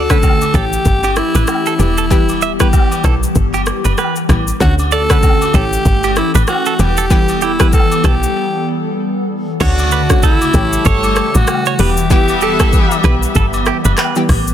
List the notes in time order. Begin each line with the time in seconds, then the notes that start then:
Already playing: D2 D3 A3 C#4 F#4 A4
0.10 D3 A3 C#4 F#4 B4, kick, cross-stick, shaker
0.23 kick, low woodblock, shaker
0.41 high agogo, shaker
0.54 A1 E3 A3 C#4 G4 A4, kick, shaker
0.73 shaker
0.85 G1, kick, shaker
1.03 G4, high agogo, shaker
1.16 E4, cross-stick, shaker
1.35 A1 B4, high agogo, shaker
1.47 cross-stick, low woodblock, shaker
1.66 A4, shaker
1.79 E1 E3 G3 B3 E4 G4, high agogo, shaker
1.98 A4, shaker
2.10 E3 G3 B3 G4, kick, shaker
2.29 high agogo, shaker
2.42 E5, shaker
2.60 E3 G3 B3 G4 B4, kick, cross-stick, shaker
2.73 kick, low woodblock, shaker
2.92 high agogo, shaker
3.04 B1 E3 G3 B3 G4 A4, kick, cross-stick, shaker
3.23 shaker
3.35 G1, kick, shaker
3.54 G4, high agogo, shaker
3.66 cross-stick, shaker
3.85 F#1 B4, high agogo, shaker
3.98 B4, cross-stick, low woodblock, shaker
4.16 shaker
4.29 A1 E3 G3 B3 G4, kick, cross-stick, high agogo, shaker
4.48 shaker
4.60 D2 D3 A3 C#4 F#4, kick, shaker
4.79 high agogo, shaker
4.91 A4 D5, shaker
5.10 D3 A3 C#4 F#4 B4, kick, cross-stick, shaker
5.23 kick, low woodblock, shaker
5.42 high agogo, shaker
5.54 A1 E3 A3 C#4 G4 A4, kick, shaker
5.73 shaker
5.85 G1, kick, shaker
6.03 G4, high agogo, shaker
6.16 E4, cross-stick, shaker
6.35 A1 B4, high agogo, shaker
6.47 F#4, cross-stick, low woodblock, shaker
6.66 A4, shaker
6.79 E1 E3 G3 B3 G4, high agogo, shaker
6.97 A4, shaker
7.10 E3 G3 B3 G4, kick, shaker
7.28 high agogo, shaker
7.41 E4 G4, shaker
7.60 E3 G3 B3 G4 B4, kick, cross-stick, shaker
7.73 A4, kick, low woodblock, shaker
7.92 high agogo, shaker
8.04 B1 E3 G3 B3 G4 A4, kick, cross-stick, shaker
8.23 shaker
9.60 D2 C#3 D3 A3 C#4 F#4 C#5 D5, kick, crash, shaker
9.78 high agogo, shaker
9.91 B4, shaker
10.10 D3 A3 C#4 F#4, kick, cross-stick, shaker
10.23 E4 A4, kick, shaker
10.41 high agogo, shaker
10.54 A1 E3 G3 A3 C#4 G4 C#5, kick, shaker
10.73 shaker
10.85 G1 A4 C#5, kick, shaker
11.03 high agogo, shaker
11.16 cross-stick, shaker
11.35 A1 F#4, high agogo, shaker
11.47 cross-stick, low woodblock, shaker
11.66 C#5, shaker
11.79 E1 E3 G3 B3 G4 B4 E5, open hi-hat, high agogo, shaker
11.97 shaker
12.10 E3 G3 B3 G4, kick, shaker
12.28 high agogo, shaker
12.41 G4 A4, shaker
12.60 E3 G3 B3 G4 A4, kick, cross-stick, shaker
12.73 kick, shaker
12.91 high agogo, shaker
13.04 B1 E3 G3 B3 G4 B4, kick, cross-stick, shaker
13.23 shaker
13.35 G1 A4, kick, shaker
13.53 high agogo, shaker
13.66 G4, cross-stick, shaker
13.85 F#1 B4, high agogo, shaker
13.97 B4, cross-stick, clap, low woodblock, shaker
14.16 E3 G3 B3 G4, shaker
14.29 A1, kick, cross-stick, open hi-hat, high agogo, shaker
14.47 shaker